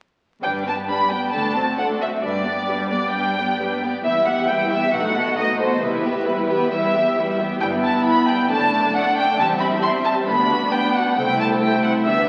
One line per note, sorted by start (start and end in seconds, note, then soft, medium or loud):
0.42 0.85 G1 soft
0.42 1.29 G2 soft
0.42 0.63 G3 soft
0.42 0.64 D4 soft
0.42 0.64 B4 soft
0.42 0.64 D5 soft
0.42 0.52 G5 medium
0.66 0.88 B3 soft
0.66 0.88 G4 soft
0.66 0.87 B4 soft
0.66 0.75 A5 medium
0.88 1.11 G3 soft
0.88 1.11 D4 soft
0.88 1.09 B4 soft
0.88 1.11 D5 soft
0.88 1.11 B5 medium
1.10 1.33 B3 soft
1.10 1.33 G4 soft
1.10 1.33 B4 soft
1.10 1.33 G5 medium
1.32 2.21 D2 soft
1.32 1.75 D2 soft
1.32 1.54 A3 soft
1.32 1.54 D4 soft
1.32 1.53 A4 soft
1.32 1.53 D5 soft
1.32 1.76 A5 medium
1.55 1.78 C4 soft
1.55 1.78 F#4 soft
1.55 1.78 C5 soft
1.78 2.01 A3 soft
1.78 2.00 D4 soft
1.78 2.01 A4 soft
1.78 2.01 D5 soft
1.78 1.86 F#5 medium
2.00 2.23 C4 soft
2.00 2.23 F#4 soft
2.00 2.23 C5 soft
2.00 2.09 E5 medium
2.22 2.65 G1 soft
2.22 4.00 G2 soft
2.22 2.44 G3 soft
2.22 2.44 D4 soft
2.22 2.44 B4 soft
2.22 2.89 D5 medium
2.45 2.67 B3 soft
2.45 2.68 G4 soft
2.45 2.68 D5 soft
2.67 2.91 G3 soft
2.67 2.91 D4 soft
2.67 2.91 B4 soft
2.90 3.14 B3 soft
2.90 3.15 G4 soft
2.90 3.13 D5 medium
2.90 3.15 D5 soft
3.13 3.36 G3 soft
3.13 3.36 D4 soft
3.13 3.35 B4 soft
3.13 3.79 G5 medium
3.38 3.60 B3 soft
3.38 3.60 G4 soft
3.38 3.60 D5 soft
3.60 3.82 G3 soft
3.60 3.82 D4 soft
3.60 3.82 B4 soft
3.82 4.05 B3 soft
3.82 4.04 G4 soft
3.82 4.04 D5 soft
4.04 4.45 E1 soft
4.04 4.91 E2 soft
4.04 4.25 G3 soft
4.04 4.25 E4 soft
4.04 4.25 B4 soft
4.04 4.24 E5 medium
4.26 4.49 B3 soft
4.26 4.48 G4 soft
4.26 4.49 G4 soft
4.26 4.48 E5 soft
4.26 4.48 F#5 medium
4.47 4.71 G3 soft
4.47 4.70 E4 soft
4.47 4.71 E4 soft
4.47 4.70 B4 soft
4.47 4.70 G5 medium
4.70 4.93 B3 soft
4.70 4.92 G4 soft
4.70 4.93 G4 soft
4.70 4.92 E5 medium
4.70 4.93 E5 soft
4.92 5.34 B1 soft
4.92 5.82 B2 soft
4.92 5.14 A3 soft
4.92 5.14 D#4 soft
4.92 5.13 F#4 soft
4.92 5.13 B4 soft
4.92 5.38 F#5 medium
5.15 5.38 B3 soft
5.15 5.37 F#4 soft
5.15 5.37 A4 soft
5.15 5.37 D#5 soft
5.37 5.60 A3 soft
5.37 5.60 D#4 soft
5.37 5.59 F#4 soft
5.37 5.59 B4 soft
5.37 5.59 D#5 medium
5.59 5.81 B3 soft
5.59 5.82 F#4 soft
5.59 5.81 A4 soft
5.59 5.81 C5 medium
5.59 5.81 D#5 soft
5.81 6.23 E1 soft
5.81 7.57 E2 medium
5.81 6.02 G3 soft
5.81 6.01 E4 soft
5.81 6.02 E4 soft
5.81 6.47 B4 medium
5.81 6.02 B4 soft
6.03 6.26 B3 soft
6.03 6.26 G4 soft
6.03 6.25 E5 soft
6.25 6.48 G3 soft
6.25 6.48 E4 soft
6.25 6.49 E4 soft
6.25 6.48 B4 soft
6.48 6.72 B3 soft
6.48 6.71 G4 soft
6.48 6.72 G4 soft
6.48 6.71 B4 medium
6.48 6.71 E5 soft
6.71 6.92 G3 soft
6.71 6.93 E4 soft
6.71 6.93 B4 soft
6.71 7.39 E5 medium
6.94 7.17 B3 soft
6.94 7.16 G4 soft
6.94 7.17 G4 soft
6.94 7.16 E5 soft
7.16 7.40 G3 soft
7.16 7.38 E4 soft
7.16 7.39 E4 soft
7.16 7.38 B4 soft
7.39 7.59 B3 soft
7.39 7.61 G4 soft
7.39 7.61 E5 soft
7.61 7.96 G1 medium
7.61 7.98 G2 medium
7.61 7.71 G3 soft
7.61 8.46 B3 medium
7.61 8.46 E4 soft
7.61 8.46 B4 soft
7.61 7.69 G5 medium
7.73 7.83 B3 soft
7.83 7.95 E4 soft
7.83 8.05 A5 medium
7.96 8.06 G4 soft
8.05 8.17 E4 soft
8.05 8.27 B5 medium
8.18 8.28 B3 soft
8.27 8.39 G3 medium
8.27 8.50 G5 medium
8.40 8.51 B3 soft
8.49 8.85 F#1 medium
8.49 8.87 F#2 medium
8.49 9.39 A3 medium
8.49 8.61 A3 medium
8.49 9.39 D4 medium
8.49 9.40 D5 medium
8.49 8.94 A5 medium
8.61 8.72 D4 soft
8.73 8.84 A3 soft
8.84 8.95 D4 soft
8.95 9.06 A3 soft
8.95 9.16 F#5 medium
9.06 9.17 D4 soft
9.17 9.28 A3 soft
9.17 9.38 G5 medium
9.28 9.39 D4 soft
9.38 9.74 E1 medium
9.38 9.76 E2 medium
9.38 9.49 G3 soft
9.38 10.27 G3 medium
9.38 10.28 C4 medium
9.38 10.28 E5 soft
9.38 9.47 A5 medium
9.50 9.61 C4 soft
9.60 9.72 E4 soft
9.60 9.68 B5 medium
9.72 9.83 G4 soft
9.82 9.95 E4 medium
9.82 9.90 C6 medium
9.94 10.05 C4 soft
10.05 10.17 G3 medium
10.05 10.13 A5 medium
10.18 10.28 C4 soft
10.27 10.64 D2 medium
10.27 10.66 D2 medium
10.27 10.39 B3 medium
10.27 11.18 B3 medium
10.27 11.18 D4 medium
10.27 11.16 B4 medium
10.27 10.72 B5 medium
10.40 10.51 D4 medium
10.51 10.62 F#4 soft
10.63 10.73 D4 soft
10.72 10.84 B3 soft
10.72 10.95 G5 medium
10.85 10.96 D4 soft
10.96 11.07 F#4 medium
10.96 11.18 F#5 medium
11.07 11.18 D4 soft
11.17 11.55 C2 medium
11.17 11.53 C2 medium
11.17 12.05 A3 medium
11.17 11.28 C4 soft
11.17 12.06 E4 medium
11.17 12.07 C5 medium
11.17 11.40 G5 medium
11.30 11.41 E4 soft
11.40 11.52 G4 soft
11.40 11.48 A5 medium
11.52 11.63 A4 soft
11.62 11.74 G4 soft
11.62 11.84 G5 medium
11.74 11.85 E4 soft
11.84 11.96 C4 soft
11.84 11.92 F#5 medium
11.95 12.07 E4 soft
12.06 12.29 D2 medium
12.06 12.17 G3 medium
12.06 12.29 B3 soft
12.06 12.29 D4 soft
12.06 12.29 B4 medium
12.06 12.29 E5 medium
12.18 12.29 B3 soft